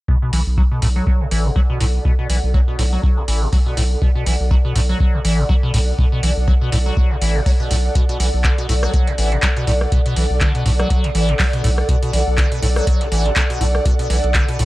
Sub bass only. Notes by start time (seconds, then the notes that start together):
0.33 B1
0.47 B1
0.82 B1
1.31 A1
1.81 B1
2.30 B1
2.43 B1
2.79 B1
3.28 A1
3.77 B1
4.26 B1
4.40 B1
4.76 B1
5.25 A1
5.74 B1
6.23 B1
6.37 B1
6.72 B1
7.21 A1
7.71 B1
8.20 B1
8.34 B1
8.69 B1
9.18 A1
9.67 B1
10.16 B1
10.30 B1
10.66 B1
11.15 A1
11.64 B1
12.13 B1
12.27 B1
12.62 B1
13.12 A1
13.61 B1
14.10 B1
14.24 B1
14.59 B1